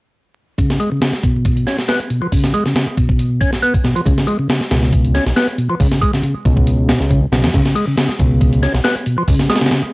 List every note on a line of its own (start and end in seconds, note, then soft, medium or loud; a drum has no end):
0.58 0.79 C#3 loud
0.58 kick loud
0.58 closed hi-hat medium
0.70 snare soft
0.80 0.90 G#3 medium
0.80 closed hi-hat medium
0.92 1.00 C#3 medium
1.02 1.13 C#3 medium
1.02 snare loud
1.02 closed hi-hat medium
1.13 snare soft
1.23 1.66 B2 medium
1.23 kick medium
1.23 closed hi-hat medium
1.45 kick medium
1.45 closed hi-hat medium
1.57 closed hi-hat soft
1.67 1.77 C#4 medium
1.67 snare soft
1.67 closed hi-hat medium
1.79 snare soft
1.88 2.00 B3 medium
1.88 snare loud
1.88 closed hi-hat medium
2.00 closed hi-hat soft
2.10 2.21 B2 medium
2.10 closed hi-hat medium
2.22 2.27 F3 medium
2.32 2.53 C#3 loud
2.32 kick loud
2.32 open hi-hat medium
2.44 snare soft
2.54 2.64 G#3 medium
2.54 closed hi-hat medium
2.66 2.74 C#3 medium
2.66 snare soft
2.76 2.87 C#3 medium
2.76 snare loud
2.76 closed hi-hat medium
2.97 3.40 B2 medium
2.97 kick medium
2.97 closed hi-hat medium
3.09 kick medium
3.19 closed hi-hat medium
3.41 3.51 C#4 medium
3.41 kick medium
3.41 closed hi-hat medium
3.53 snare soft
3.62 3.74 B3 loud
3.62 closed hi-hat medium
3.74 kick medium
3.74 closed hi-hat medium
3.84 3.95 B2 medium
3.84 snare soft
3.96 4.01 F3 medium
3.96 closed hi-hat medium
4.06 4.13 C#2 loud
4.06 4.27 C#3 loud
4.06 kick loud
4.06 closed hi-hat medium
4.18 snare soft
4.27 4.38 G#3 medium
4.27 closed hi-hat medium
4.39 4.48 C#3 medium
4.49 4.60 C#3 medium
4.49 snare loud
4.49 closed hi-hat medium
4.61 snare soft
4.71 5.20 C#2 medium
4.71 5.14 B2 medium
4.71 snare medium
4.71 closed hi-hat medium
4.83 snare soft
4.93 kick medium
4.93 closed hi-hat medium
5.05 closed hi-hat soft
5.15 5.25 C#4 medium
5.15 snare soft
5.15 closed hi-hat medium
5.26 5.33 B1 medium
5.26 snare soft
5.36 5.48 B3 loud
5.36 snare loud
5.36 closed hi-hat medium
5.48 closed hi-hat soft
5.58 5.69 B2 medium
5.58 closed hi-hat medium
5.70 5.75 F3 medium
5.80 5.87 C#2 loud
5.80 6.01 C#3 loud
5.80 kick loud
5.80 open hi-hat medium
5.92 snare soft
6.02 6.12 G#3 medium
6.02 kick medium
6.02 closed hi-hat medium
6.13 6.22 C#3 medium
6.13 snare soft
6.23 6.34 C#3 medium
6.23 closed hi-hat medium
6.45 6.94 C#2 medium
6.45 6.88 B2 medium
6.45 kick medium
6.45 closed hi-hat medium
6.57 kick medium
6.67 closed hi-hat medium
6.89 6.99 B2 medium
6.89 snare medium
6.89 closed hi-hat medium
7.00 7.26 C#2 medium
7.00 snare soft
7.11 7.21 C#3 loud
7.11 kick medium
7.11 closed hi-hat medium
7.32 7.45 B1 loud
7.32 7.42 C#3 medium
7.32 snare loud
7.32 closed hi-hat medium
7.44 7.50 F2 medium
7.44 7.49 C#3 medium
7.44 snare loud
7.44 closed hi-hat medium
7.54 7.61 C#2 loud
7.54 7.75 C#3 loud
7.54 kick loud
7.54 closed hi-hat medium
7.54 crash medium
7.66 snare soft
7.76 7.86 G#3 medium
7.76 closed hi-hat medium
7.87 7.96 C#3 medium
7.97 8.08 C#3 medium
7.97 snare loud
7.97 closed hi-hat medium
8.09 snare soft
8.19 8.68 C#2 medium
8.19 8.62 B2 medium
8.19 kick medium
8.19 closed hi-hat medium
8.41 kick medium
8.41 closed hi-hat medium
8.53 closed hi-hat soft
8.63 8.73 C#4 medium
8.63 snare soft
8.63 closed hi-hat medium
8.74 8.81 B1 medium
8.74 snare soft
8.84 8.95 B3 loud
8.84 snare loud
8.84 closed hi-hat medium
8.96 closed hi-hat soft
9.06 9.17 B2 medium
9.06 closed hi-hat medium
9.18 9.23 F3 medium
9.28 9.35 C#2 loud
9.28 9.49 C#3 loud
9.28 kick loud
9.28 open hi-hat medium
9.39 snare soft
9.50 9.60 G#3 medium
9.50 snare medium
9.50 closed hi-hat medium
9.56 snare medium
9.56 closed hi-hat medium
9.61 9.70 C#3 medium
9.61 snare medium
9.61 closed hi-hat medium
9.66 snare medium
9.66 closed hi-hat medium
9.71 9.83 C#3 medium
9.71 snare loud
9.71 closed hi-hat medium